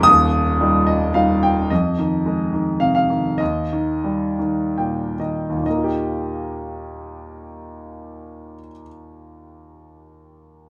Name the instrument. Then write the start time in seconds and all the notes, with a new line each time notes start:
grand piano
0.03 D#1 D#2 D#6
0.60 G3 D#4 F4
0.87 D#5
1.14 G3 D#4 F4 F5
1.43 G5
1.70 F2 D#5
1.99 D#3
2.26 G#3
2.53 D#3
2.80 C3 F5
2.95 F5
3.10 D#3
3.38 D#2 D#5
3.73 D#3
4.04 G3
4.39 D#3
4.78 A#2 G5
5.19 D#3 D#5
5.50 D#2
5.56 A#2
5.63 D#3 D#5
5.70 A#3
5.77 F4
5.84 G4